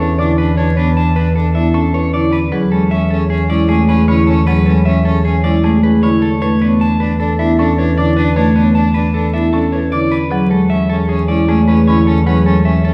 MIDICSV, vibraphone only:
0, 0, Header, 1, 2, 480
1, 0, Start_track
1, 0, Tempo, 389610
1, 706, Time_signature, 5, 2, 24, 8
1, 15941, End_track
2, 0, Start_track
2, 0, Title_t, "Vibraphone"
2, 0, Program_c, 0, 11
2, 0, Note_on_c, 0, 71, 76
2, 229, Note_on_c, 0, 64, 63
2, 299, Note_off_c, 0, 71, 0
2, 539, Note_off_c, 0, 64, 0
2, 708, Note_on_c, 0, 71, 71
2, 1019, Note_off_c, 0, 71, 0
2, 1425, Note_on_c, 0, 71, 66
2, 1738, Note_off_c, 0, 71, 0
2, 1906, Note_on_c, 0, 64, 73
2, 2218, Note_off_c, 0, 64, 0
2, 2383, Note_on_c, 0, 71, 85
2, 2625, Note_on_c, 0, 64, 75
2, 2697, Note_off_c, 0, 71, 0
2, 2938, Note_off_c, 0, 64, 0
2, 3105, Note_on_c, 0, 68, 82
2, 3418, Note_off_c, 0, 68, 0
2, 3827, Note_on_c, 0, 68, 77
2, 4139, Note_off_c, 0, 68, 0
2, 4306, Note_on_c, 0, 64, 74
2, 4618, Note_off_c, 0, 64, 0
2, 4786, Note_on_c, 0, 68, 82
2, 5026, Note_on_c, 0, 64, 75
2, 5098, Note_off_c, 0, 68, 0
2, 5338, Note_off_c, 0, 64, 0
2, 5505, Note_on_c, 0, 68, 79
2, 5818, Note_off_c, 0, 68, 0
2, 6227, Note_on_c, 0, 68, 69
2, 6538, Note_off_c, 0, 68, 0
2, 6707, Note_on_c, 0, 64, 73
2, 7019, Note_off_c, 0, 64, 0
2, 7189, Note_on_c, 0, 68, 80
2, 7430, Note_on_c, 0, 64, 75
2, 7499, Note_off_c, 0, 68, 0
2, 7740, Note_off_c, 0, 64, 0
2, 7908, Note_on_c, 0, 71, 81
2, 8219, Note_off_c, 0, 71, 0
2, 8628, Note_on_c, 0, 71, 68
2, 8939, Note_off_c, 0, 71, 0
2, 9105, Note_on_c, 0, 64, 82
2, 9418, Note_off_c, 0, 64, 0
2, 9584, Note_on_c, 0, 71, 81
2, 9826, Note_on_c, 0, 64, 65
2, 9898, Note_off_c, 0, 71, 0
2, 10138, Note_off_c, 0, 64, 0
2, 10307, Note_on_c, 0, 71, 72
2, 10618, Note_off_c, 0, 71, 0
2, 11027, Note_on_c, 0, 71, 67
2, 11339, Note_off_c, 0, 71, 0
2, 11508, Note_on_c, 0, 64, 72
2, 11819, Note_off_c, 0, 64, 0
2, 11987, Note_on_c, 0, 71, 71
2, 12228, Note_on_c, 0, 64, 71
2, 12299, Note_off_c, 0, 71, 0
2, 12539, Note_off_c, 0, 64, 0
2, 12706, Note_on_c, 0, 68, 78
2, 13018, Note_off_c, 0, 68, 0
2, 13428, Note_on_c, 0, 68, 67
2, 13739, Note_off_c, 0, 68, 0
2, 13906, Note_on_c, 0, 64, 76
2, 14219, Note_off_c, 0, 64, 0
2, 14390, Note_on_c, 0, 68, 81
2, 14629, Note_on_c, 0, 64, 73
2, 14699, Note_off_c, 0, 68, 0
2, 14939, Note_off_c, 0, 64, 0
2, 15108, Note_on_c, 0, 68, 84
2, 15419, Note_off_c, 0, 68, 0
2, 15828, Note_on_c, 0, 68, 70
2, 15941, Note_off_c, 0, 68, 0
2, 15941, End_track
0, 0, End_of_file